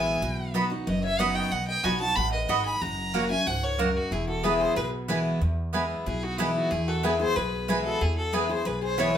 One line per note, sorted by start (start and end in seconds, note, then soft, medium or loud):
0.00 0.17 A1 medium
0.00 0.19 B2 medium
0.00 0.20 E3 medium
0.00 0.21 G#3 loud
0.00 0.21 B3 loud
0.00 0.21 E4 loud
0.00 0.50 G#5 loud
0.22 0.74 B1 medium
0.22 0.84 B2 medium
0.54 0.70 F#3 medium
0.54 0.64 B3 medium
0.54 0.70 B3 medium
0.54 0.70 D#4 medium
0.54 0.64 F#4 medium
0.54 0.69 F#4 medium
0.54 0.64 D#5 medium
0.54 0.64 B5 medium
0.70 0.87 D#4 soft
0.70 0.86 F#4 medium
0.87 1.39 F#1 medium
0.87 1.49 F#2 medium
0.87 1.02 B4 medium
0.87 1.02 D#5 medium
1.04 1.20 C#5 medium
1.04 1.21 E5 loud
1.19 1.50 F#3 medium
1.19 1.28 B3 medium
1.19 1.50 B3 medium
1.19 1.51 D#4 loud
1.19 1.28 F#4 medium
1.19 1.51 F#4 loud
1.19 1.35 D#5 medium
1.19 1.29 D#5 loud
1.19 1.37 F#5 medium
1.19 1.29 B5 medium
1.35 1.51 D#5 medium
1.35 1.53 G5 loud
1.52 1.78 B1 medium
1.52 2.14 B2 medium
1.52 1.67 D#5 medium
1.52 1.67 F#5 medium
1.68 1.83 D#5 medium
1.68 1.86 G5 loud
1.83 2.12 B1 medium
1.83 2.00 F#3 medium
1.83 1.93 B3 medium
1.83 2.00 B3 medium
1.83 2.01 D#4 medium
1.83 1.93 F#4 medium
1.83 1.99 F#4 medium
1.83 1.94 D#5 medium
1.83 2.01 D#5 medium
1.83 2.00 G#5 medium
1.83 1.94 B5 medium
2.00 2.17 D#4 soft
2.00 2.16 F#4 medium
2.00 2.16 F#5 medium
2.00 2.17 A5 loud
2.16 2.44 A1 medium
2.16 2.48 A2 medium
2.16 2.33 F#5 medium
2.16 2.32 B5 loud
2.32 2.50 B4 medium
2.32 2.51 D#5 medium
2.49 2.77 G#1 medium
2.49 2.80 G#2 loud
2.49 2.58 B3 medium
2.49 2.58 F#4 loud
2.49 2.58 D#5 loud
2.49 2.66 D#5 medium
2.49 2.65 F#5 medium
2.49 2.59 B5 medium
2.65 2.82 G#5 medium
2.65 2.83 B5 loud
2.81 3.33 F#1 loud
2.81 3.44 F#2 medium
2.81 3.30 F#5 medium
2.81 3.30 A#5 medium
3.14 3.30 F#3 medium
3.14 3.23 A#3 medium
3.14 3.30 A#3 medium
3.14 3.30 C#4 medium
3.14 3.23 F#4 medium
3.14 3.29 F#4 medium
3.14 3.24 C#5 medium
3.14 3.24 F#5 medium
3.30 3.47 C#4 soft
3.30 3.46 F#4 medium
3.30 3.46 E5 medium
3.30 3.48 G#5 loud
3.46 3.98 C#2 medium
3.46 3.78 G#2 medium
3.46 3.63 C#5 medium
3.46 3.65 F#5 medium
3.63 3.79 A#4 loud
3.63 3.81 C#5 loud
3.78 4.10 F#2 loud
3.78 3.88 A#3 medium
3.78 3.95 F#4 medium
3.78 3.88 F#4 medium
3.78 3.98 A#4 medium
3.78 3.88 C#5 medium
3.78 3.89 F#5 loud
3.95 4.11 D#4 medium
3.95 4.14 F#4 medium
4.11 4.63 E1 medium
4.11 4.74 E2 medium
4.11 4.28 E4 medium
4.11 4.28 G#4 medium
4.28 4.44 F#4 medium
4.28 4.46 A4 medium
4.43 4.75 E3 medium
4.43 4.75 G#3 medium
4.43 4.53 B3 medium
4.43 4.75 B3 medium
4.43 4.53 E4 medium
4.43 4.76 E4 medium
4.43 4.59 G#4 medium
4.43 4.53 B4 medium
4.43 4.62 B4 medium
4.43 4.53 G#5 medium
4.60 4.76 G#4 medium
4.60 4.76 C5 loud
4.76 5.28 B1 medium
4.76 5.38 B2 medium
4.76 4.92 G#4 medium
4.76 4.86 B4 medium
5.08 5.40 E3 medium
5.08 5.40 G#3 loud
5.08 5.18 B3 medium
5.08 5.40 B3 loud
5.08 5.18 E4 medium
5.08 5.40 E4 loud
5.08 5.18 B4 medium
5.08 5.18 G#5 medium
5.41 5.93 E2 medium
5.73 6.04 E3 medium
5.73 6.05 G#3 medium
5.73 5.83 B3 medium
5.73 6.05 B3 medium
5.73 5.83 E4 medium
5.73 6.05 E4 medium
5.73 5.83 B4 medium
5.73 5.83 G#5 medium
6.06 6.58 B1 medium
6.06 6.68 B2 medium
6.06 6.23 E4 medium
6.06 6.25 G#4 medium
6.23 6.39 D#4 medium
6.23 6.41 F#4 medium
6.38 6.70 E3 medium
6.38 6.70 G#3 loud
6.38 6.48 B3 medium
6.38 6.55 B3 soft
6.38 6.70 B3 loud
6.38 6.55 D#4 medium
6.38 6.48 E4 medium
6.38 6.70 E4 loud
6.38 6.48 B4 medium
6.38 6.48 G#5 medium
6.56 6.72 D#4 medium
6.56 6.72 F#4 medium
6.71 7.33 E2 medium
6.71 7.23 E2 medium
6.71 6.88 E4 medium
6.71 6.89 G#4 medium
6.88 7.04 F#4 medium
6.88 7.06 A4 medium
7.03 7.19 E3 medium
7.03 7.20 G#3 medium
7.03 7.13 B3 medium
7.03 7.20 B3 medium
7.03 7.13 E4 medium
7.03 7.18 E4 medium
7.03 7.20 G#4 medium
7.03 7.20 B4 medium
7.03 7.13 B4 medium
7.03 7.13 G#5 medium
7.20 7.36 B3 soft
7.20 7.35 E4 medium
7.20 7.36 G#4 medium
7.20 7.38 C5 loud
7.36 7.88 B1 medium
7.36 7.98 B2 medium
7.36 7.85 G#4 medium
7.36 7.84 B4 medium
7.68 8.00 E3 medium
7.68 8.00 G#3 loud
7.68 7.78 B3 medium
7.68 8.00 B3 loud
7.68 7.78 E4 medium
7.68 8.00 E4 loud
7.68 7.78 B4 medium
7.68 7.78 G#5 loud
7.85 8.01 F#4 medium
7.85 8.03 A4 medium
8.01 8.63 E2 medium
8.01 8.53 E2 medium
8.01 8.17 E4 medium
8.01 8.17 G#4 medium
8.18 8.34 F#4 medium
8.18 8.35 A4 medium
8.33 8.49 E3 medium
8.33 8.49 G#3 medium
8.33 8.43 B3 medium
8.33 8.50 B3 medium
8.33 8.43 E4 medium
8.33 8.48 E4 medium
8.33 8.49 G#4 medium
8.33 8.52 B4 medium
8.33 8.43 B4 medium
8.33 8.43 G#5 medium
8.49 8.66 B3 soft
8.49 8.65 E4 medium
8.49 8.65 G#4 medium
8.49 8.68 C5 loud
8.65 9.18 B1 medium
8.65 9.18 B2 medium
8.65 8.81 G#4 medium
8.65 8.82 B4 medium
8.82 8.97 G#4 medium
8.82 9.01 C5 loud
8.98 9.18 E3 loud
8.98 9.18 G#3 medium
8.98 9.07 B3 medium
8.98 9.18 B3 loud
8.98 9.08 E4 medium
8.98 9.18 E4 loud
8.98 9.15 G#4 medium
8.98 9.08 B4 medium
8.98 9.18 C#5 medium
8.98 9.08 G#5 medium